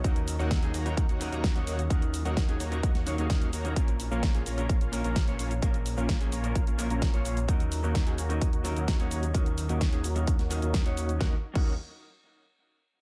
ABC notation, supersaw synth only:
X:1
M:4/4
L:1/16
Q:1/4=129
K:Ebm
V:1 name="Supersaw synth"
[B,EGdg] z2 [B,EGdg]2 [B,EGda] [B,EGdb]2 [B,Gd] [B,EGdg]2 [B,EGdb]2 [B,EGdg] [B,EGdg] z | [B,EGdg] z2 [B,EGdg]2 [B,EGda] [B,EGdb]2 [B,EGdg] [B,EGdg] [B,EGdf] [B,EGdf] [B,EG]2 [B,EGdb]2 | z3 [B,DFdf]2 [B,DFda] [B,DFdb]2 [B,DFdf] [B,DFdf]2 [B,DFdb]2 [B,DFdf] [B,DFdf] z | [B,DFdf] z2 [B,DFdf]2 [B,DFda] [B,DFdb]2 [B,DFf] [B,DFdf]2 [B,DFdb]2 [B,DFdf] [B,DFdf] z |
[B,EGdg] z2 [B,EGdg]2 [B,EGda] [B,EGdb]2 z [B,EGdg]2 [B,EGdb]2 [B,EGdg] [B,EGdg] z | [B,EGdg] z2 [B,EGdg]2 [B,EGda] [B,EGdb]2 z [B,EGdg]2 [B,EGdb]2 [B,EGdg] [B,EGdg] z | [B,EGdg] z2 [B,EGdg]2 z8 z3 |]